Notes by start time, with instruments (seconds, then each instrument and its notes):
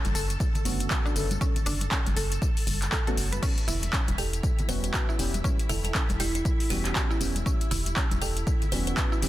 Already playing: string machine A4 A5
0.05 fm bass F#1, closed hi-hat, tambourine, high conga
0.15 fm bass F#1, synth arpeggio sound A4, open hi-hat, tambourine
0.30 closed hi-hat, tambourine
0.40 kick, tambourine
0.55 closed hi-hat, tambourine, low conga
0.65 fm bass F#1, synth stab D3 A3 B3 C#4 F#4, open hi-hat, tambourine, high conga
0.80 closed hi-hat, tambourine
0.90 synth arpeggio sound F#4, kick, clap, tambourine
1.06 synth arpeggio sound D4, tambourine
1.16 fm bass F#1, synth stab D3 A3 B3 C#4 A4, open hi-hat, tambourine
1.31 closed hi-hat, tambourine, high conga
1.41 synth arpeggio sound C#4, kick, tambourine, muted conga
1.56 closed hi-hat, tambourine, low conga
1.66 fm bass F#1, synth arpeggio sound D4, open hi-hat, tambourine, low conga
1.81 closed hi-hat, tambourine, muted conga
1.91 synth arpeggio sound C#4, kick, clap, tambourine
2.06 fm bass F#1, closed hi-hat, tambourine, high conga
2.17 fm bass F#1, synth arpeggio sound A4, open hi-hat, tambourine
2.32 closed hi-hat, tambourine
2.42 kick, tambourine
2.57 open hi-hat, tambourine
2.67 fm bass F#1, open hi-hat, tambourine, high conga
2.82 clap, closed hi-hat, tambourine
2.92 synth arpeggio sound A4, kick, clap, tambourine
3.07 synth stab D3 A3 B3 C#4 F#4, synth arpeggio sound A4, closed hi-hat, tambourine
3.17 fm bass F#1, open hi-hat, tambourine
3.32 synth arpeggio sound B4, closed hi-hat, tambourine, high conga
3.43 synth arpeggio sound C#4, string machine E4 E5, kick, crash, tambourine
3.58 closed hi-hat, tambourine
3.68 fm bass E1, synth arpeggio sound E4, open hi-hat, tambourine, low conga
3.83 closed hi-hat, tambourine, muted conga
3.93 synth arpeggio sound C#4, kick, clap, tambourine
4.08 fm bass E1, closed hi-hat, tambourine, high conga
4.18 fm bass E1, synth arpeggio sound G4, kalimba A4, open hi-hat, tambourine
4.33 closed hi-hat, tambourine
4.43 kick, tambourine
4.59 closed hi-hat, tambourine, low conga
4.68 fm bass E1, synth stab E3 G3 B3 C#4 F#4, kalimba B4, open hi-hat, tambourine, high conga
4.84 kalimba B4, closed hi-hat, tambourine
4.94 synth arpeggio sound F#4, kick, clap, tambourine
5.09 synth arpeggio sound E4, tambourine
5.19 fm bass E1, synth stab E3 G3 B3 C#4 G4, open hi-hat, tambourine
5.34 closed hi-hat, tambourine, high conga
5.44 synth arpeggio sound C#4, kick, tambourine
5.59 closed hi-hat, tambourine
5.69 fm bass E1, synth arpeggio sound E4, kalimba A4, open hi-hat, tambourine, low conga
5.84 kalimba A4, closed hi-hat, tambourine, muted conga
5.95 synth arpeggio sound C#4, kick, clap, tambourine
6.09 fm bass E1, closed hi-hat, tambourine, high conga
6.20 fm bass E1, kalimba E4, synth arpeggio sound G4, open hi-hat, tambourine
6.35 kalimba E4, closed hi-hat, tambourine
6.45 kick, tambourine
6.60 open hi-hat, tambourine
6.70 fm bass E1, synth stab E3 G3 B3 C#4 F#4, kalimba G4, open hi-hat, tambourine, high conga
6.85 kalimba G4, clap, closed hi-hat, tambourine
6.96 synth arpeggio sound F#4, kick, clap, tambourine
7.11 synth arpeggio sound E4, tambourine
7.21 fm bass E1, synth stab E3 G3 B3 C#4 G4, open hi-hat, tambourine
7.36 closed hi-hat, tambourine, high conga
7.46 synth arpeggio sound C#4, kick, tambourine
7.61 closed hi-hat, tambourine
7.71 fm bass E1, synth arpeggio sound E4, open hi-hat, tambourine, low conga
7.86 closed hi-hat, tambourine, muted conga
7.96 synth arpeggio sound C#4, kick, clap, tambourine
8.11 fm bass E1, closed hi-hat, tambourine, high conga
8.22 fm bass E1, synth arpeggio sound G4, kalimba A4, open hi-hat, tambourine
8.37 closed hi-hat, tambourine
8.47 kick, tambourine
8.62 closed hi-hat, tambourine, low conga
8.71 fm bass E1, synth stab E3 G3 B3 C#4 F#4, kalimba B4, open hi-hat, tambourine, high conga
8.87 kalimba B4, closed hi-hat, tambourine
8.97 synth arpeggio sound F#4, kick, clap, tambourine
9.12 synth arpeggio sound E4, tambourine
9.22 fm bass E1, synth stab E3 G3 B3 C#4 G4, open hi-hat, tambourine